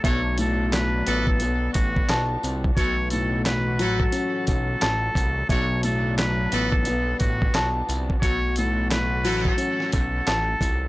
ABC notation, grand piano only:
X:1
M:4/4
L:1/8
Q:"Swing 16ths" 1/4=88
K:F#phr
V:1 name="Grand piano" clef=bass
B,,, A,,2 B, B,2 a2 | B,, A,,2 F, C2 a2 | B,,, A,,2 B, B,2 a2 | B,, A,,2 F, C2 a2 |]